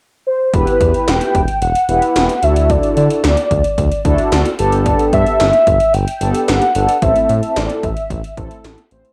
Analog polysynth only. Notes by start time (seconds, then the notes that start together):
0.54 B3 E4 G4 B4
1.89 B3 E4 G4 B4
2.43 D4 E4 F#4 A4
4.05 D4 E4 F#4 A4
4.59 B3 D4 G4 A4
6.21 B3 D4 G4 A4
6.75 B3 D4 G4 A4
7.02 A3 C4 E4 A4
8.37 A3 C4 E4 A4
8.91 A3 C4 E4 C5